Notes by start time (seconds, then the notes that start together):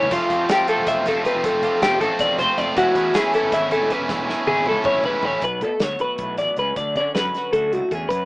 Already playing: E3 A3 C#4 E4 G#4 C#5
0.02 C#2, floor tom
0.10 F1 F2 F3 A3 C4 F4 G4, kick, closed hi-hat, splash
0.30 F2 A3 C4 F4 G4, kick, closed hi-hat
0.49 F3 A3 C4 F4 G4, snare, closed hi-hat
0.68 F3 A3 C4 F4 A4, closed hi-hat
0.77 E1
0.87 E1 E5, kick, snare, closed hi-hat
1.06 C3 A3 C4 F4 A4, kick, snare, closed hi-hat
1.16 F1
1.25 F3 A3 C4 F4 B4, kick, closed hi-hat
1.35 F1
1.44 F2 F3 A3 C4 F4 A4, kick, closed hi-hat
1.53 F1
1.63 A3 C4 F4 G4, kick, closed hi-hat
1.82 E1 F3 A3 C4 F4 G4, snare, closed hi-hat
2.00 A1 F3 A3 C4 F4 A4, closed hi-hat
2.19 E1 D5, kick, snare, closed hi-hat
2.38 F1 C3 A3 C4 F4 C5, kick, snare, closed hi-hat
2.57 F1 F3 A3 C4 F4 D5, kick, closed hi-hat
2.67 F1
2.77 E1 E2 E3 A3 C#4 E4 F#4, kick, closed hi-hat
2.95 E2 A3 C#4 E4 G#4, kick, closed hi-hat
3.14 E3 A3 C#4 E4 G#4, snare, closed hi-hat
3.18 E4
3.34 E3 A3 C#4 E4 A4, closed hi-hat
3.43 G#1
3.52 G#1 E4 E5, kick, snare, closed hi-hat
3.71 E2 A3 C#4 E4 A4, kick, closed hi-hat
3.81 E1
3.90 E3 A3 C#4 E4 B4, kick, closed hi-hat
3.99 E1
4.09 E2 E3 A3 C#4 E4, kick, snare
4.18 E1
4.28 A3 C#4 E4 G#4, snare
4.47 G#1 E3 A3 C#4 E4 G#4, high tom
4.58 E4
4.66 C#2 E3 A3 C#4 E4 A4, mid tom
4.84 G#1 F#2 C#5, kick, mid tom
5.03 E1 C#4 E4 B4, floor tom
5.07 G#2 A3
5.22 E1 A2 E3 A3 C#4 E4 C#5, floor tom
5.31 A1
5.41 B1 B2 B4, kick, closed hi-hat
5.61 B2 A3 A4, kick, closed hi-hat
5.80 D2 F#3 C#5, snare, closed hi-hat
5.99 B4, closed hi-hat
6.04 F#4
6.18 B1, kick, closed hi-hat
6.23 A2
6.38 A1 D5, snare, closed hi-hat
6.43 B2
6.57 C#2 B4, closed hi-hat
6.61 C#3
6.76 D2 D5, kick, closed hi-hat
6.80 D3
6.96 D3 D5, kick, closed hi-hat
7.00 C#4
7.15 F#2 F#3 B4, snare, closed hi-hat
7.34 F#4, snare, closed hi-hat
7.53 D2 F#4 A4, kick, closed hi-hat
7.72 C#2 A2 F#4, closed hi-hat
7.91 E2 G#4, kick, closed hi-hat
7.95 C#4
8.09 F#2 B4, kick, closed hi-hat